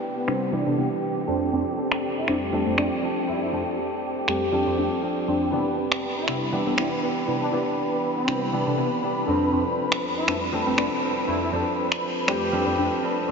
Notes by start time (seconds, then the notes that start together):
Already playing: B3 D4 G4 G5
0.17 C4
0.27 C3 G3 B3 D4 E4, finger snap
0.52 C3 E3 G3 B3 D4 E4 G4
0.66 C3 G3 B3 D4 A4
0.78 C3 G3 B3 D4 E4
1.27 F2 F3 G3 A3 C4 D4 A4
1.53 F2 G3 A3 C4 D4
1.77 C4 D4 A4
1.92 finger snap
2.17 E4
2.28 F2 G3 A3 C4 D4, finger snap
2.52 F2 F3 G3 A3 C4 D4 A4
2.66 F2 G3 A3 C4 G4
2.77 F2 G3 A3 C4 D4, finger snap
3.02 F3 C4 D4 A4
3.27 F2 G3 A3 C4 D4 E4
3.42 E4
3.52 F2 F3 G3 A3 C4 D4 A4
3.77 C4 D4 A4
4.27 F2 G3 A3 C4 D4 G4, finger snap
4.52 F2 F3 G3 A3 C4 D4 A4
4.66 F2 G3 A3 C4 G4
4.77 F2 G3 A3 C4 D4
5.02 F3 C4 D4 A4
5.27 F2 G3 A3 C4 D4
5.52 C3 E3 G3 B3 D4 E4 G4 B4 B5
5.77 B3 D4 G4
5.92 finger snap
6.17 E4
6.28 C3 G3 B3 D4 E4, finger snap
6.52 C3 E3 G3 B3 D4 E4 G4
6.66 C3 G3 B3 D4 A4
6.77 C3 G3 B3 D4 E4, finger snap
7.02 E3 B3 D4 G4
7.27 C3 G3 B3 D4 E4
7.42 D4
7.52 C3 E3 G3 B3 D4 E4
7.56 G4
8.16 C4
8.27 C3 G3 B3 D4 E4, finger snap
8.52 C3 E3 G3 B3 D4 E4 G4
8.66 C3 G3 B3 D4 A4
8.77 C3 G3 B3 D4 E4
9.02 E3 B3 D4 G4
9.27 F2 G3 A3 C4 D4 A4
9.31 F3
9.52 F2 G3 A3 C4 D4
9.92 finger snap
10.17 E4
10.27 F2 G3 A3 C4 D4, finger snap
10.52 F2 F3 G3 A3 C4 D4 A4
10.66 F2 G3 A3 C4 G4
10.77 F2 G3 A3 C4 D4, finger snap
11.02 F3 C4 D4 A4
11.27 F2 G3 A3 C4 D4 E4
11.42 E4
11.52 F2 F3 G3 A3 C4 D4
11.56 A4
11.92 finger snap
12.27 F2 G3 A3 C4 D4 G4, finger snap
12.52 F2 F3 G3 A3 C4 D4 A4
12.66 F2 G3 A3 C4 G4
12.78 F2 G3 A3 C4 D4
13.02 F3 C4 D4 A4
13.28 F2 G3 A3 C4